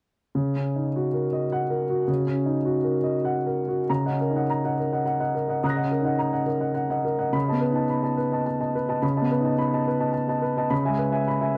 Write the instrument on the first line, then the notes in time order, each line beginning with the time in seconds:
grand piano
0.35 C#3
0.56 C#4
0.76 D#4
0.96 F#4
1.14 A#4
1.33 D#5
1.52 F#5
1.70 A#4
1.90 F#4
2.08 C#3
2.27 C#4
2.46 D#4
2.65 F#4
2.84 A#4
3.04 D#5
3.25 F#5
3.46 A#4
3.68 F#4
3.90 C#3 A#5
4.06 D#5 F#5
4.10 C#4
4.21 A#4
4.30 D#4
4.36 D#5 F#5
4.50 A#5
4.65 D#5 F#5
4.79 A#4
4.92 D#5 F#5
5.06 F#5
5.20 D#5 F#5
5.35 A#4
5.48 D#5 F#5
5.63 C#3 A#5 D#6 F#6
5.70 A#6
5.76 D#5 F#5
5.81 C#4
5.91 A#4
6.01 D#4 D#5
6.05 F#5
6.19 A#5
6.33 D#5 F#5
6.46 A#4
6.60 D#5 F#5
6.74 F#5
6.90 D#5 F#5
7.05 A#4
7.19 D#5 F#5
7.33 C#3 B5
7.48 B3 D#5 A5
7.61 B4
7.70 D#4
7.75 D#5 A5
7.90 B5
8.03 D#5 A5
8.17 B4
8.32 D#5 A5
8.46 A5
8.60 D#5 A5
8.75 B4
8.88 D#5 A5
9.02 C#3 B5
9.17 D#5 A5
9.22 B3
9.31 B4
9.40 D#4
9.45 D#5 A5
9.58 B5
9.73 D#5 A5
9.87 B4
10.00 D#5 A5
10.13 A5
10.28 D#5 A5
10.42 B4
10.57 D#5 A5
10.70 C#3 B5
10.85 G#3 E5 G#5
10.99 B4
11.12 E5 G#5
11.28 B5
11.41 E5 G#5